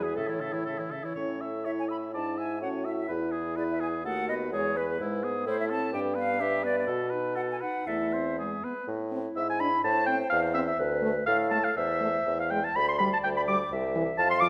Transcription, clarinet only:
0.00 0.17 G#4 medium
0.16 0.66 A4 medium
1.18 1.43 E4 soft
1.42 1.68 A4 soft
1.67 1.93 E4 soft
1.91 2.15 A4 soft
2.16 2.41 D4 soft
2.39 2.62 E4 soft
2.63 2.88 C#4 soft
2.86 3.09 E4 soft
3.10 3.36 G#4 soft
3.34 3.60 E4 soft
3.58 3.82 G#4 soft
3.81 4.05 E4 soft
4.05 4.30 A3 soft
4.29 4.52 B3 soft
4.53 4.78 G#3 soft
4.76 5.00 B3 soft
5.00 5.25 G#3 soft
5.24 5.46 B3 soft
5.47 5.72 A3 soft
5.70 5.94 C4 soft
5.94 6.18 D4 soft
6.17 6.42 B3 soft
6.41 6.66 D4 soft
6.64 6.87 B3 soft
6.87 7.14 F#4 soft
7.12 7.39 D#4 soft
7.37 7.64 F#4 soft
7.62 7.87 D#4 soft
7.89 8.15 A3 soft
8.14 8.38 C4 soft
8.38 8.61 G#3 soft
8.64 8.75 B3 medium
8.89 9.80 E4 medium
9.84 10.77 C5 medium
10.79 11.26 B4 medium
11.26 11.78 A4 medium
11.77 12.51 C5 medium
12.76 13.68 D5 medium
13.72 14.18 E5 medium
14.19 14.49 F5 medium

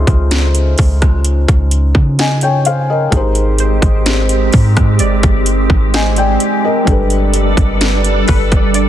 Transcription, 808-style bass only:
0.07 0.75 C#2 loud
0.79 1.46 C#2 loud
1.49 1.94 C#2 loud
1.95 3.08 C#3 loud
3.12 3.80 G#1 loud
3.82 4.50 G#1 loud
4.54 5.01 G#2 loud
5.00 5.22 G1 loud
5.23 5.68 G1 loud
5.70 6.38 G#1 loud
6.87 7.55 G1 loud
7.57 8.25 G1 loud
8.29 8.89 G1 loud

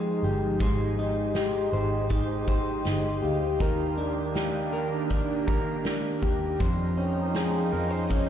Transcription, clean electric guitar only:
0.00 0.61 F2 medium
0.00 0.61 G#3 medium
0.00 0.24 G4 medium
0.00 0.61 C5 medium
0.24 1.36 G4 medium
0.61 3.60 G#3 medium
0.61 1.72 C5 medium
0.99 2.10 D#4 medium
1.36 3.22 G4 medium
1.73 2.47 C5 medium
2.10 2.85 D#4 medium
2.48 3.61 C5 medium
2.85 3.97 D#4 medium
3.22 4.35 G4 soft
3.60 6.61 D#3 medium
3.60 4.72 A#4 medium
3.97 5.09 D4 medium
4.35 6.21 G4 medium
4.73 5.46 A#4 medium
5.10 5.84 D4 medium
5.47 6.60 A#4 medium
5.85 6.68 D4 medium
6.22 6.68 G4 medium
6.60 8.29 F2 medium
6.60 7.72 C5 medium
6.97 8.09 C#4 medium
7.35 8.29 G#4 medium
7.72 7.91 A#4 medium
7.91 8.29 C5 medium
8.10 8.29 C#4 medium

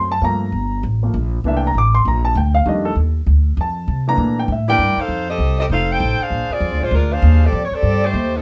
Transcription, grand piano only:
0.00 0.12 C6 medium
0.12 0.23 A5 medium
0.22 0.45 F3 medium
0.22 0.45 A3 soft
0.22 0.45 A#3 medium
0.22 0.81 A#5 medium
1.03 1.13 F3 soft
1.03 1.13 A3 soft
1.03 1.14 A#3 soft
1.45 1.67 E3 medium
1.45 1.67 A3 soft
1.45 1.68 A#3 soft
1.45 1.68 D4 medium
1.45 1.56 E5 medium
1.57 1.66 G5 medium
1.67 1.76 A#5 medium
1.78 1.95 D6 medium
1.95 2.06 C6 medium
2.08 2.25 A#5 medium
2.25 2.36 A5 medium
2.37 2.55 G5 medium
2.55 2.66 F5 medium
2.66 2.88 D#3 medium
2.66 2.88 G3 soft
2.66 2.89 A3 medium
2.66 2.89 D4 medium
2.66 2.86 D#5 medium
2.85 2.92 A4 medium
3.61 4.05 A5 medium
4.07 4.47 E3 medium
4.07 4.47 A3 medium
4.07 4.47 A#3 soft
4.07 4.48 D4 medium
4.07 4.36 A#5 loud
4.39 4.50 G5 medium
4.52 4.69 E5 medium
4.68 4.78 E3 soft
4.68 4.78 A3 soft
4.68 4.79 A#3 soft
4.68 4.79 D4 soft
4.68 4.76 G5 loud

